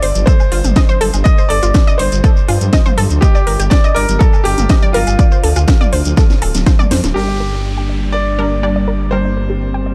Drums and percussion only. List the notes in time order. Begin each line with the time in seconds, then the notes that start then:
0.03 open hi-hat
0.15 closed hi-hat, high conga, shekere
0.27 kick, closed hi-hat, shekere
0.40 high woodblock, shekere
0.52 open hi-hat
0.64 closed hi-hat, mid tom, shekere
0.76 kick, snare, closed hi-hat, shekere
0.89 high conga, shekere
1.01 open hi-hat
1.13 closed hi-hat, high woodblock, shekere
1.25 kick, closed hi-hat, shekere
1.38 shekere
1.50 open hi-hat
1.63 closed hi-hat, shekere
1.74 kick, snare, closed hi-hat, shekere
1.88 shekere
1.99 open hi-hat
2.12 closed hi-hat, shekere
2.24 kick, closed hi-hat, shekere
2.36 shekere
2.49 open hi-hat, high woodblock
2.61 closed hi-hat, high conga, shekere
2.73 kick, snare, closed hi-hat, shekere
2.86 mid tom, high conga, shekere
2.98 open hi-hat, high conga
3.10 closed hi-hat, shekere
3.22 kick, closed hi-hat, shekere
3.35 shekere
3.47 open hi-hat
3.60 closed hi-hat, shekere
3.71 kick, snare, closed hi-hat, shekere
3.84 shekere
3.96 open hi-hat
4.09 closed hi-hat, high conga, shekere
4.21 kick, closed hi-hat, shekere
4.33 high woodblock, shekere
4.45 open hi-hat
4.58 closed hi-hat, mid tom, shekere
4.69 kick, snare, closed hi-hat, shekere
4.82 high conga, shekere
4.94 open hi-hat
5.07 closed hi-hat, high woodblock, shekere
5.19 kick, closed hi-hat, shekere
5.31 shekere
5.44 open hi-hat
5.56 closed hi-hat, high woodblock, shekere
5.68 kick, snare, closed hi-hat, shekere
5.81 mid tom, shekere
5.93 open hi-hat
6.05 closed hi-hat, high conga, shekere
6.17 kick, snare, closed hi-hat, shekere
6.30 snare, shekere
6.42 open hi-hat, high woodblock
6.54 snare, closed hi-hat, high conga, shekere
6.66 kick, snare, closed hi-hat, shekere
6.79 mid tom, high conga, shekere
6.91 snare, open hi-hat, high conga
7.04 snare, closed hi-hat, shekere
9.01 closed hi-hat
9.50 closed hi-hat
9.62 closed hi-hat